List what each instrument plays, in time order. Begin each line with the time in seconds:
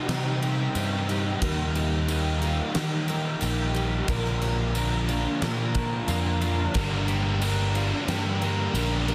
Already playing: twelve-string acoustic guitar A#4
0.08 overdriven electric guitar C3 G3 C4 D#4 G4, picked electric bass C3, twelve-string acoustic guitar G4, snare, crash
0.41 overdriven electric guitar C4 D#4 G4, twelve-string acoustic guitar A#4, crash
0.75 picked electric bass G2, overdriven electric guitar C3 G3 C4 D#4 G4, twelve-string acoustic guitar G4, tambourine, crash
1.09 overdriven electric guitar G3 C4 D#4 G4, twelve-string acoustic guitar G4, crash
1.41 picked electric bass D#2, overdriven electric guitar D#3 G3 A#3 D#4 G4, twelve-string acoustic guitar A#4, kick, crash
1.75 twelve-string acoustic guitar G4, crash
2.08 overdriven electric guitar D#3 G3 A#3 D#4 G4, tambourine, crash
2.42 overdriven electric guitar G3 A#3 D#4, twelve-string acoustic guitar F4, crash
2.74 picked electric bass D#3, overdriven electric guitar D#3 G3 A#3 D#4 G4, twelve-string acoustic guitar G4, snare, crash
3.08 overdriven electric guitar A#3 D#4 G4, twelve-string acoustic guitar A#4, crash
3.41 picked electric bass A#1, overdriven electric guitar D#3 G3 A#3 D#4 G4, twelve-string acoustic guitar G4, tambourine, crash
3.74 overdriven electric guitar G3 A#3 D#4 G4, twelve-string acoustic guitar G4, crash
4.08 picked electric bass A#1, overdriven electric guitar A#2 D3 F3 A#3 D4 A#4, twelve-string acoustic guitar A#4, kick, crash
4.25 snare
4.42 twelve-string acoustic guitar G4, crash
4.74 overdriven electric guitar D3 F3 A#3 D4 A#4, tambourine, crash
5.09 overdriven electric guitar F3 A#3 D4, twelve-string acoustic guitar F4, crash
5.41 picked electric bass A#2, overdriven electric guitar D3 F3 A#3 D4 A#4, twelve-string acoustic guitar G4, snare, crash
5.74 overdriven electric guitar F3 A#3 D4 A#4, twelve-string acoustic guitar A5, kick, crash
6.07 picked electric bass F2, overdriven electric guitar D3 F3 A#3 D4 A#4, twelve-string acoustic guitar F4, tambourine, crash
6.41 overdriven electric guitar F3 A#3 D4 A#4, twelve-string acoustic guitar F4, crash
6.74 picked electric bass G1, distorted electric guitar G2 D3 G3, overdriven electric guitar G2 D3 G3 A#3 D4 A#4, twelve-string acoustic guitar A#4, kick, crash
7.08 distorted electric guitar G2 D3 G3, twelve-string acoustic guitar G4, crash
7.41 distorted electric guitar G2 D3 G3, overdriven electric guitar D3 G3 A#3 D4 A#4, tambourine, crash
7.75 distorted electric guitar G2 D3 G3, overdriven electric guitar G3 A#3 D4, twelve-string acoustic guitar F4, crash
8.08 picked electric bass G2, distorted electric guitar G2 D3 G3, overdriven electric guitar D3 G3 A#3 D4 A#4, twelve-string acoustic guitar G4, snare, crash
8.41 distorted electric guitar G2 D3 G3, overdriven electric guitar G3 A#3 D4 A#4, twelve-string acoustic guitar A#4, crash
8.74 picked electric bass A#1, distorted electric guitar G2 D3 G3, overdriven electric guitar D3 G3 A#3 D4 A#4, twelve-string acoustic guitar G4, tambourine, crash
9.07 distorted electric guitar G2 D3 G3, overdriven electric guitar A#3 D4 A#4, twelve-string acoustic guitar G4, crash
9.11 overdriven electric guitar G3